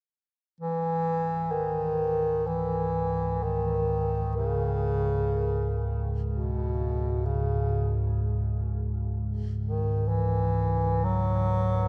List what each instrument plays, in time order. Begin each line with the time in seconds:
0.60 synth drone C#2 G#2, bass clarinet E3
1.51 bass clarinet D#3
2.47 bass clarinet E3
3.43 bass clarinet D#3
4.37 bass clarinet C#3
6.29 bass clarinet B2
7.25 bass clarinet C#3
9.63 bass clarinet D#3
10.09 bass clarinet E3
11.04 bass clarinet F#3